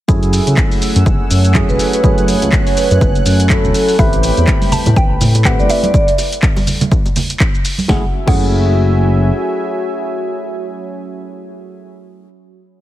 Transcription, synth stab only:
0, 0, Header, 1, 2, 480
1, 0, Start_track
1, 0, Key_signature, 3, "minor"
1, 0, Tempo, 487805
1, 85, Time_signature, 4, 2, 24, 8
1, 12605, End_track
2, 0, Start_track
2, 0, Title_t, "Synth stab"
2, 0, Program_c, 0, 62
2, 79, Note_on_c, 0, 54, 79
2, 82, Note_on_c, 0, 57, 75
2, 85, Note_on_c, 0, 61, 74
2, 87, Note_on_c, 0, 64, 75
2, 90, Note_on_c, 0, 68, 86
2, 1498, Note_off_c, 0, 54, 0
2, 1499, Note_off_c, 0, 57, 0
2, 1500, Note_off_c, 0, 61, 0
2, 1502, Note_off_c, 0, 64, 0
2, 1503, Note_off_c, 0, 68, 0
2, 1522, Note_on_c, 0, 54, 83
2, 1523, Note_on_c, 0, 57, 72
2, 1525, Note_on_c, 0, 61, 72
2, 1526, Note_on_c, 0, 64, 72
2, 1528, Note_on_c, 0, 68, 94
2, 1979, Note_off_c, 0, 54, 0
2, 1980, Note_off_c, 0, 57, 0
2, 1980, Note_off_c, 0, 61, 0
2, 1981, Note_off_c, 0, 64, 0
2, 1982, Note_off_c, 0, 68, 0
2, 1999, Note_on_c, 0, 54, 81
2, 2002, Note_on_c, 0, 57, 74
2, 2005, Note_on_c, 0, 61, 76
2, 2008, Note_on_c, 0, 64, 74
2, 2010, Note_on_c, 0, 68, 90
2, 3418, Note_off_c, 0, 54, 0
2, 3419, Note_off_c, 0, 57, 0
2, 3420, Note_off_c, 0, 61, 0
2, 3422, Note_off_c, 0, 64, 0
2, 3423, Note_off_c, 0, 68, 0
2, 3442, Note_on_c, 0, 54, 78
2, 3444, Note_on_c, 0, 57, 75
2, 3445, Note_on_c, 0, 61, 72
2, 3447, Note_on_c, 0, 64, 73
2, 3448, Note_on_c, 0, 69, 90
2, 3899, Note_off_c, 0, 54, 0
2, 3900, Note_off_c, 0, 57, 0
2, 3901, Note_off_c, 0, 61, 0
2, 3901, Note_off_c, 0, 64, 0
2, 3902, Note_off_c, 0, 69, 0
2, 3920, Note_on_c, 0, 57, 79
2, 3923, Note_on_c, 0, 60, 73
2, 3925, Note_on_c, 0, 64, 70
2, 3928, Note_on_c, 0, 67, 73
2, 3931, Note_on_c, 0, 71, 94
2, 5338, Note_off_c, 0, 57, 0
2, 5339, Note_off_c, 0, 60, 0
2, 5341, Note_off_c, 0, 64, 0
2, 5342, Note_off_c, 0, 67, 0
2, 5344, Note_off_c, 0, 71, 0
2, 5362, Note_on_c, 0, 57, 84
2, 5364, Note_on_c, 0, 60, 72
2, 5365, Note_on_c, 0, 64, 71
2, 5366, Note_on_c, 0, 67, 74
2, 5368, Note_on_c, 0, 71, 90
2, 5819, Note_off_c, 0, 57, 0
2, 5820, Note_off_c, 0, 60, 0
2, 5821, Note_off_c, 0, 64, 0
2, 5821, Note_off_c, 0, 67, 0
2, 5822, Note_off_c, 0, 71, 0
2, 7757, Note_on_c, 0, 54, 87
2, 7761, Note_on_c, 0, 57, 83
2, 7765, Note_on_c, 0, 61, 79
2, 7769, Note_on_c, 0, 64, 76
2, 7773, Note_on_c, 0, 68, 96
2, 7908, Note_off_c, 0, 54, 0
2, 7910, Note_off_c, 0, 57, 0
2, 7912, Note_off_c, 0, 61, 0
2, 7915, Note_off_c, 0, 64, 0
2, 7917, Note_off_c, 0, 68, 0
2, 8135, Note_on_c, 0, 54, 92
2, 8139, Note_on_c, 0, 57, 82
2, 8143, Note_on_c, 0, 61, 83
2, 8147, Note_on_c, 0, 64, 84
2, 8151, Note_on_c, 0, 68, 98
2, 12068, Note_off_c, 0, 54, 0
2, 12072, Note_off_c, 0, 57, 0
2, 12076, Note_off_c, 0, 61, 0
2, 12081, Note_off_c, 0, 64, 0
2, 12085, Note_off_c, 0, 68, 0
2, 12605, End_track
0, 0, End_of_file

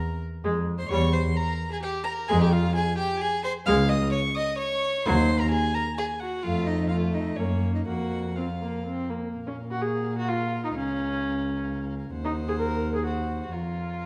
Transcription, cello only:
0, 0, Header, 1, 2, 480
1, 0, Start_track
1, 0, Key_signature, -4, "minor"
1, 0, Tempo, 462963
1, 929, Time_signature, 3, 2, 24, 8
1, 3804, Key_signature, -5, "minor"
1, 7170, Tempo, 485437
1, 9570, Tempo, 465839
1, 14430, End_track
2, 0, Start_track
2, 0, Title_t, "Cello"
2, 0, Program_c, 0, 42
2, 454, Note_on_c, 0, 41, 88
2, 851, Note_off_c, 0, 41, 0
2, 929, Note_on_c, 0, 40, 105
2, 1332, Note_off_c, 0, 40, 0
2, 2383, Note_on_c, 0, 41, 121
2, 2774, Note_off_c, 0, 41, 0
2, 3807, Note_on_c, 0, 37, 111
2, 4204, Note_off_c, 0, 37, 0
2, 5244, Note_on_c, 0, 39, 115
2, 5644, Note_off_c, 0, 39, 0
2, 6688, Note_on_c, 0, 41, 101
2, 7597, Note_off_c, 0, 41, 0
2, 7633, Note_on_c, 0, 42, 73
2, 8107, Note_off_c, 0, 42, 0
2, 8122, Note_on_c, 0, 41, 74
2, 9344, Note_off_c, 0, 41, 0
2, 9570, Note_on_c, 0, 46, 65
2, 10975, Note_off_c, 0, 46, 0
2, 11017, Note_on_c, 0, 37, 70
2, 12405, Note_off_c, 0, 37, 0
2, 12432, Note_on_c, 0, 39, 79
2, 13833, Note_off_c, 0, 39, 0
2, 13877, Note_on_c, 0, 41, 56
2, 14430, Note_off_c, 0, 41, 0
2, 14430, End_track
0, 0, End_of_file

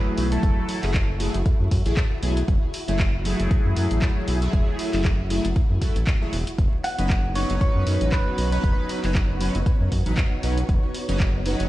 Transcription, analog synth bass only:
0, 0, Header, 1, 2, 480
1, 0, Start_track
1, 0, Tempo, 512821
1, 404, Time_signature, 4, 2, 24, 8
1, 10939, End_track
2, 0, Start_track
2, 0, Title_t, "Analog synth bass"
2, 0, Program_c, 0, 38
2, 164, Note_on_c, 0, 35, 98
2, 356, Note_off_c, 0, 35, 0
2, 404, Note_on_c, 0, 30, 93
2, 507, Note_off_c, 0, 30, 0
2, 779, Note_on_c, 0, 30, 94
2, 1210, Note_off_c, 0, 30, 0
2, 1258, Note_on_c, 0, 30, 104
2, 1340, Note_off_c, 0, 30, 0
2, 1498, Note_on_c, 0, 42, 85
2, 1580, Note_off_c, 0, 42, 0
2, 1603, Note_on_c, 0, 42, 81
2, 1707, Note_off_c, 0, 42, 0
2, 1738, Note_on_c, 0, 33, 101
2, 1820, Note_off_c, 0, 33, 0
2, 2084, Note_on_c, 0, 35, 100
2, 2276, Note_off_c, 0, 35, 0
2, 2324, Note_on_c, 0, 30, 99
2, 2428, Note_off_c, 0, 30, 0
2, 2698, Note_on_c, 0, 30, 93
2, 3129, Note_off_c, 0, 30, 0
2, 3178, Note_on_c, 0, 30, 103
2, 3260, Note_off_c, 0, 30, 0
2, 3418, Note_on_c, 0, 42, 86
2, 3500, Note_off_c, 0, 42, 0
2, 3524, Note_on_c, 0, 42, 82
2, 3628, Note_off_c, 0, 42, 0
2, 3658, Note_on_c, 0, 33, 103
2, 3740, Note_off_c, 0, 33, 0
2, 4004, Note_on_c, 0, 35, 101
2, 4196, Note_off_c, 0, 35, 0
2, 4243, Note_on_c, 0, 30, 97
2, 4347, Note_off_c, 0, 30, 0
2, 4618, Note_on_c, 0, 30, 90
2, 5049, Note_off_c, 0, 30, 0
2, 5098, Note_on_c, 0, 30, 101
2, 5180, Note_off_c, 0, 30, 0
2, 5338, Note_on_c, 0, 42, 84
2, 5420, Note_off_c, 0, 42, 0
2, 5578, Note_on_c, 0, 33, 98
2, 5660, Note_off_c, 0, 33, 0
2, 5924, Note_on_c, 0, 28, 101
2, 6028, Note_off_c, 0, 28, 0
2, 6163, Note_on_c, 0, 30, 94
2, 6267, Note_off_c, 0, 30, 0
2, 6538, Note_on_c, 0, 30, 89
2, 6969, Note_off_c, 0, 30, 0
2, 7018, Note_on_c, 0, 30, 105
2, 7100, Note_off_c, 0, 30, 0
2, 7258, Note_on_c, 0, 42, 85
2, 7340, Note_off_c, 0, 42, 0
2, 7364, Note_on_c, 0, 42, 80
2, 7468, Note_off_c, 0, 42, 0
2, 7498, Note_on_c, 0, 33, 107
2, 7580, Note_off_c, 0, 33, 0
2, 7844, Note_on_c, 0, 35, 99
2, 8036, Note_off_c, 0, 35, 0
2, 8083, Note_on_c, 0, 30, 96
2, 8187, Note_off_c, 0, 30, 0
2, 8458, Note_on_c, 0, 30, 93
2, 8889, Note_off_c, 0, 30, 0
2, 8938, Note_on_c, 0, 30, 103
2, 9020, Note_off_c, 0, 30, 0
2, 9179, Note_on_c, 0, 42, 87
2, 9260, Note_off_c, 0, 42, 0
2, 9284, Note_on_c, 0, 42, 81
2, 9388, Note_off_c, 0, 42, 0
2, 9418, Note_on_c, 0, 33, 102
2, 9500, Note_off_c, 0, 33, 0
2, 9764, Note_on_c, 0, 35, 101
2, 9956, Note_off_c, 0, 35, 0
2, 10004, Note_on_c, 0, 30, 99
2, 10108, Note_off_c, 0, 30, 0
2, 10378, Note_on_c, 0, 30, 93
2, 10809, Note_off_c, 0, 30, 0
2, 10858, Note_on_c, 0, 30, 106
2, 10939, Note_off_c, 0, 30, 0
2, 10939, End_track
0, 0, End_of_file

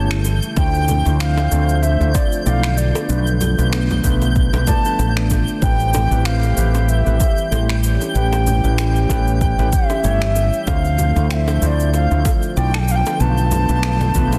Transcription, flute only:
0, 0, Header, 1, 2, 480
1, 0, Start_track
1, 0, Key_signature, 0, "minor"
1, 0, Tempo, 631579
1, 434, Time_signature, 4, 2, 24, 8
1, 10933, End_track
2, 0, Start_track
2, 0, Title_t, "Flute"
2, 0, Program_c, 0, 73
2, 0, Note_on_c, 0, 81, 100
2, 163, Note_off_c, 0, 81, 0
2, 434, Note_on_c, 0, 79, 112
2, 883, Note_off_c, 0, 79, 0
2, 910, Note_on_c, 0, 77, 98
2, 1385, Note_on_c, 0, 76, 93
2, 1397, Note_off_c, 0, 77, 0
2, 1626, Note_on_c, 0, 74, 85
2, 1637, Note_off_c, 0, 76, 0
2, 1864, Note_off_c, 0, 74, 0
2, 1868, Note_on_c, 0, 79, 89
2, 1893, Note_on_c, 0, 77, 97
2, 1900, Note_off_c, 0, 79, 0
2, 2110, Note_on_c, 0, 74, 78
2, 2121, Note_off_c, 0, 77, 0
2, 2592, Note_off_c, 0, 74, 0
2, 3550, Note_on_c, 0, 81, 108
2, 4002, Note_off_c, 0, 81, 0
2, 4274, Note_on_c, 0, 79, 108
2, 4754, Note_on_c, 0, 77, 99
2, 4765, Note_off_c, 0, 79, 0
2, 5238, Note_on_c, 0, 76, 82
2, 5250, Note_off_c, 0, 77, 0
2, 5956, Note_off_c, 0, 76, 0
2, 6190, Note_on_c, 0, 79, 98
2, 6641, Note_off_c, 0, 79, 0
2, 6671, Note_on_c, 0, 79, 91
2, 7392, Note_on_c, 0, 76, 99
2, 7403, Note_off_c, 0, 79, 0
2, 8112, Note_on_c, 0, 77, 99
2, 8123, Note_off_c, 0, 76, 0
2, 8586, Note_off_c, 0, 77, 0
2, 8591, Note_on_c, 0, 79, 85
2, 8618, Note_on_c, 0, 76, 93
2, 8626, Note_off_c, 0, 79, 0
2, 8831, Note_off_c, 0, 76, 0
2, 8831, Note_on_c, 0, 76, 78
2, 8868, Note_on_c, 0, 74, 84
2, 8875, Note_off_c, 0, 76, 0
2, 9072, Note_off_c, 0, 74, 0
2, 9076, Note_on_c, 0, 77, 100
2, 9334, Note_off_c, 0, 77, 0
2, 9556, Note_on_c, 0, 79, 118
2, 9685, Note_on_c, 0, 81, 108
2, 9693, Note_off_c, 0, 79, 0
2, 9720, Note_on_c, 0, 79, 118
2, 9728, Note_off_c, 0, 81, 0
2, 9814, Note_on_c, 0, 77, 108
2, 9822, Note_off_c, 0, 79, 0
2, 9850, Note_on_c, 0, 79, 118
2, 9857, Note_off_c, 0, 77, 0
2, 10035, Note_on_c, 0, 81, 114
2, 10046, Note_off_c, 0, 79, 0
2, 10933, Note_off_c, 0, 81, 0
2, 10933, End_track
0, 0, End_of_file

